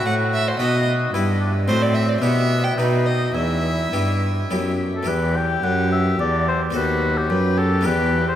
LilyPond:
<<
  \new Staff \with { instrumentName = "Violin" } { \time 3/4 \key e \minor \tempo 4 = 108 fis''8 e''16 c''16 dis''8 r4. | c''16 d''16 e''16 d''16 e''8. g''16 b'8 dis''8 | e''2~ e''8 r8 | g'2. |
fis'4 b'8 g'4. | }
  \new Staff \with { instrumentName = "Oboe" } { \time 3/4 \key e \minor fis'4 fis'4 e'8 d'8 | c'4 b4 dis'4 | e'2~ e'8 r16 a'16 | b'8 g''8 fis''8 e''8 d''8 c''8 |
b'8. g'8. a'8 b'8. c''16 | }
  \new Staff \with { instrumentName = "Harpsichord" } { \time 3/4 \key e \minor r4 <b dis' b'>4 <b e' b'>4 | <c' fis' a'>4 <b e' g'>4 <b dis' fis'>4 | r4 <b e' g'>4 <b e' g'>4 | <b e' g'>2. |
<b fis' a'>2 <b e' g'>4 | }
  \new Staff \with { instrumentName = "Harpsichord" } { \clef bass \time 3/4 \key e \minor a,4 b,4 g,4 | a,4 b,4 b,4 | e,4 g,4 fis,4 | e,4 fis,4 e,4 |
dis,4 fis,4 e,4 | }
  \new Staff \with { instrumentName = "Cello" } { \clef bass \time 3/4 \key e \minor a,4 b,4 g,4 | a,4 b,4 b,4 | e,4 g,4 fis,4 | e,4 fis,4 e,4 |
dis,4 fis,4 e,4 | }
>>